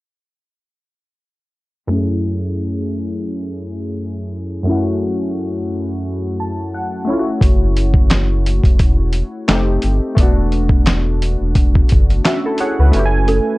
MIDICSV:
0, 0, Header, 1, 5, 480
1, 0, Start_track
1, 0, Key_signature, 3, "minor"
1, 0, Tempo, 689655
1, 1322, Time_signature, 4, 2, 24, 8
1, 9452, End_track
2, 0, Start_track
2, 0, Title_t, "Kalimba"
2, 0, Program_c, 0, 108
2, 9244, Note_on_c, 0, 69, 69
2, 9452, Note_off_c, 0, 69, 0
2, 9452, End_track
3, 0, Start_track
3, 0, Title_t, "Synth keys"
3, 0, Program_c, 1, 88
3, 1304, Note_on_c, 1, 42, 64
3, 1319, Note_on_c, 1, 57, 62
3, 1331, Note_on_c, 1, 61, 63
3, 1343, Note_on_c, 1, 64, 57
3, 1359, Note_on_c, 1, 68, 75
3, 1469, Control_c, 1, 64, 127
3, 3205, Note_off_c, 1, 42, 0
3, 3213, Note_off_c, 1, 57, 0
3, 3219, Note_off_c, 1, 61, 0
3, 3224, Note_on_c, 1, 42, 66
3, 3225, Note_off_c, 1, 64, 0
3, 3232, Note_off_c, 1, 68, 0
3, 3237, Note_on_c, 1, 57, 61
3, 3251, Note_on_c, 1, 61, 65
3, 3267, Note_on_c, 1, 64, 63
3, 3278, Note_on_c, 1, 66, 78
3, 4454, Note_on_c, 1, 81, 60
3, 4671, Note_off_c, 1, 81, 0
3, 4694, Note_on_c, 1, 78, 65
3, 4885, Note_off_c, 1, 42, 0
3, 4891, Note_off_c, 1, 57, 0
3, 4899, Note_off_c, 1, 61, 0
3, 4905, Note_on_c, 1, 57, 65
3, 4906, Note_off_c, 1, 64, 0
3, 4911, Note_off_c, 1, 78, 0
3, 4912, Note_off_c, 1, 66, 0
3, 4922, Note_on_c, 1, 61, 59
3, 4931, Control_c, 1, 64, 0
3, 4933, Note_on_c, 1, 73, 67
3, 4939, Note_on_c, 1, 64, 64
3, 4960, Note_on_c, 1, 65, 61
3, 4992, Note_off_c, 1, 65, 0
3, 5006, Note_on_c, 1, 66, 72
3, 5047, Control_c, 1, 64, 127
3, 5151, Note_off_c, 1, 73, 0
3, 6565, Note_off_c, 1, 57, 0
3, 6574, Note_off_c, 1, 61, 0
3, 6582, Note_off_c, 1, 64, 0
3, 6599, Note_on_c, 1, 57, 74
3, 6609, Control_c, 1, 64, 0
3, 6610, Note_on_c, 1, 60, 66
3, 6615, Note_on_c, 1, 63, 64
3, 6616, Note_off_c, 1, 66, 0
3, 6627, Note_on_c, 1, 67, 77
3, 6737, Control_c, 1, 64, 127
3, 7057, Note_off_c, 1, 57, 0
3, 7065, Note_on_c, 1, 57, 72
3, 7081, Note_on_c, 1, 59, 58
3, 7086, Note_off_c, 1, 60, 0
3, 7088, Note_off_c, 1, 63, 0
3, 7089, Control_c, 1, 64, 0
3, 7094, Note_off_c, 1, 67, 0
3, 7102, Note_on_c, 1, 62, 58
3, 7118, Note_on_c, 1, 66, 74
3, 7215, Control_c, 1, 64, 127
3, 8504, Note_off_c, 1, 62, 0
3, 8512, Note_off_c, 1, 66, 0
3, 8533, Note_on_c, 1, 76, 69
3, 8535, Note_on_c, 1, 66, 63
3, 8539, Note_on_c, 1, 61, 52
3, 8657, Note_off_c, 1, 66, 0
3, 8659, Note_off_c, 1, 61, 0
3, 8670, Note_on_c, 1, 69, 68
3, 8675, Note_on_c, 1, 64, 55
3, 8751, Note_off_c, 1, 76, 0
3, 8764, Note_off_c, 1, 69, 0
3, 8766, Note_off_c, 1, 64, 0
3, 8773, Note_on_c, 1, 73, 62
3, 8773, Note_on_c, 1, 78, 64
3, 8776, Note_on_c, 1, 68, 57
3, 8895, Note_off_c, 1, 73, 0
3, 8897, Note_off_c, 1, 68, 0
3, 8907, Note_on_c, 1, 71, 59
3, 8910, Note_on_c, 1, 66, 46
3, 8965, Note_off_c, 1, 57, 0
3, 8973, Note_off_c, 1, 59, 0
3, 8989, Note_on_c, 1, 57, 76
3, 8991, Note_off_c, 1, 78, 0
3, 9006, Note_on_c, 1, 61, 65
3, 9012, Control_c, 1, 64, 0
3, 9022, Note_on_c, 1, 64, 65
3, 9041, Note_on_c, 1, 67, 69
3, 9072, Note_off_c, 1, 67, 0
3, 9086, Note_on_c, 1, 80, 81
3, 9122, Control_c, 1, 64, 127
3, 9130, Note_off_c, 1, 71, 0
3, 9132, Note_off_c, 1, 66, 0
3, 9452, Note_off_c, 1, 57, 0
3, 9452, Note_off_c, 1, 61, 0
3, 9452, Note_off_c, 1, 64, 0
3, 9452, Note_off_c, 1, 80, 0
3, 9452, End_track
4, 0, Start_track
4, 0, Title_t, "Sub bass"
4, 0, Program_c, 2, 38
4, 5161, Note_on_c, 2, 30, 91
4, 5988, Note_off_c, 2, 30, 0
4, 6013, Note_on_c, 2, 28, 86
4, 6423, Note_off_c, 2, 28, 0
4, 6605, Note_on_c, 2, 29, 93
4, 6808, Note_off_c, 2, 29, 0
4, 6848, Note_on_c, 2, 31, 85
4, 6960, Note_off_c, 2, 31, 0
4, 7080, Note_on_c, 2, 28, 98
4, 7908, Note_off_c, 2, 28, 0
4, 7941, Note_on_c, 2, 28, 85
4, 8233, Note_off_c, 2, 28, 0
4, 8301, Note_on_c, 2, 30, 82
4, 8497, Note_off_c, 2, 30, 0
4, 8903, Note_on_c, 2, 37, 84
4, 8990, Note_off_c, 2, 37, 0
4, 9011, Note_on_c, 2, 30, 94
4, 9326, Note_off_c, 2, 30, 0
4, 9452, End_track
5, 0, Start_track
5, 0, Title_t, "Drums"
5, 5159, Note_on_c, 9, 36, 106
5, 5166, Note_on_c, 9, 42, 71
5, 5228, Note_off_c, 9, 36, 0
5, 5236, Note_off_c, 9, 42, 0
5, 5405, Note_on_c, 9, 42, 51
5, 5475, Note_off_c, 9, 42, 0
5, 5525, Note_on_c, 9, 36, 84
5, 5594, Note_off_c, 9, 36, 0
5, 5637, Note_on_c, 9, 42, 77
5, 5645, Note_on_c, 9, 38, 94
5, 5645, Note_on_c, 9, 39, 73
5, 5707, Note_off_c, 9, 42, 0
5, 5714, Note_off_c, 9, 39, 0
5, 5715, Note_off_c, 9, 38, 0
5, 5891, Note_on_c, 9, 42, 64
5, 5960, Note_off_c, 9, 42, 0
5, 6010, Note_on_c, 9, 36, 84
5, 6021, Note_on_c, 9, 42, 43
5, 6080, Note_off_c, 9, 36, 0
5, 6091, Note_off_c, 9, 42, 0
5, 6120, Note_on_c, 9, 42, 65
5, 6122, Note_on_c, 9, 36, 87
5, 6189, Note_off_c, 9, 42, 0
5, 6191, Note_off_c, 9, 36, 0
5, 6352, Note_on_c, 9, 42, 55
5, 6422, Note_off_c, 9, 42, 0
5, 6603, Note_on_c, 9, 38, 103
5, 6603, Note_on_c, 9, 39, 82
5, 6607, Note_on_c, 9, 42, 75
5, 6672, Note_off_c, 9, 39, 0
5, 6673, Note_off_c, 9, 38, 0
5, 6677, Note_off_c, 9, 42, 0
5, 6835, Note_on_c, 9, 42, 64
5, 6905, Note_off_c, 9, 42, 0
5, 7077, Note_on_c, 9, 36, 109
5, 7085, Note_on_c, 9, 42, 72
5, 7147, Note_off_c, 9, 36, 0
5, 7155, Note_off_c, 9, 42, 0
5, 7322, Note_on_c, 9, 42, 48
5, 7392, Note_off_c, 9, 42, 0
5, 7443, Note_on_c, 9, 36, 92
5, 7512, Note_off_c, 9, 36, 0
5, 7558, Note_on_c, 9, 42, 75
5, 7565, Note_on_c, 9, 39, 76
5, 7566, Note_on_c, 9, 38, 93
5, 7627, Note_off_c, 9, 42, 0
5, 7635, Note_off_c, 9, 39, 0
5, 7636, Note_off_c, 9, 38, 0
5, 7810, Note_on_c, 9, 42, 60
5, 7879, Note_off_c, 9, 42, 0
5, 8040, Note_on_c, 9, 42, 73
5, 8041, Note_on_c, 9, 36, 87
5, 8110, Note_off_c, 9, 42, 0
5, 8111, Note_off_c, 9, 36, 0
5, 8181, Note_on_c, 9, 36, 87
5, 8250, Note_off_c, 9, 36, 0
5, 8276, Note_on_c, 9, 42, 58
5, 8298, Note_on_c, 9, 36, 84
5, 8346, Note_off_c, 9, 42, 0
5, 8367, Note_off_c, 9, 36, 0
5, 8424, Note_on_c, 9, 42, 42
5, 8493, Note_off_c, 9, 42, 0
5, 8528, Note_on_c, 9, 38, 95
5, 8528, Note_on_c, 9, 39, 88
5, 8532, Note_on_c, 9, 42, 74
5, 8597, Note_off_c, 9, 39, 0
5, 8598, Note_off_c, 9, 38, 0
5, 8602, Note_off_c, 9, 42, 0
5, 8755, Note_on_c, 9, 42, 65
5, 8824, Note_off_c, 9, 42, 0
5, 9002, Note_on_c, 9, 42, 72
5, 9071, Note_off_c, 9, 42, 0
5, 9242, Note_on_c, 9, 42, 53
5, 9311, Note_off_c, 9, 42, 0
5, 9452, End_track
0, 0, End_of_file